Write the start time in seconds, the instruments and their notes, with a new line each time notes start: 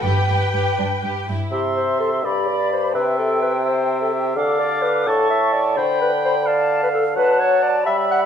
0.02 double bass section G1, cello section G2, violin section G4 B4 G5, viola section B4
0.28 cello section G2, violin section G4 B4
0.53 cello section G2, violin section G4 B4
0.78 cello section G2, violin section D4
1.02 cello section G2, violin section G4
1.29 cello section G2, violin section E4
1.51 bassoon C3, clarinet G4, oboe E5, flute section C6
1.76 clarinet C5
2.00 clarinet A4
2.24 bassoon G2, clarinet G4, oboe D5, flute section B5
2.47 clarinet D5
2.72 clarinet C5
2.93 bassoon C3, clarinet B4, oboe E5, flute section G5
3.18 clarinet A4
3.42 clarinet B4
3.65 clarinet C5, oboe E5
4.01 clarinet A4
4.13 clarinet G4
4.36 bassoon D3, clarinet A4, oboe F5, flute section D6
4.59 clarinet D5
4.82 clarinet B4
5.06 bassoon A2, clarinet A4, oboe A5, flute section C#6
5.30 clarinet E5
5.53 clarinet D5
5.77 bassoon D3, clarinet C5, oboe G5, flute section B5
6.01 clarinet B4
6.24 clarinet C5
6.46 clarinet D5, oboe F5, flute section A5
6.83 clarinet B4
6.94 clarinet A4
7.16 bassoon F#3, clarinet B4, oboe F#5, flute section A5
7.40 clarinet C#5
7.63 clarinet D5
7.84 bassoon G3, clarinet E5, oboe E5, flute section B5
8.11 clarinet F#5